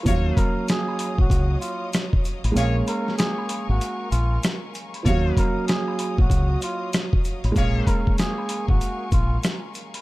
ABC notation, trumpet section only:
X:1
M:4/4
L:1/16
Q:"Swing 16ths" 1/4=96
K:Ebm
V:1 name="Trumpet section"
[GBd]3 z12 z | [ABd]2 z12 z2 | [GBd]3 z12 z | [ABd]3 z12 z |]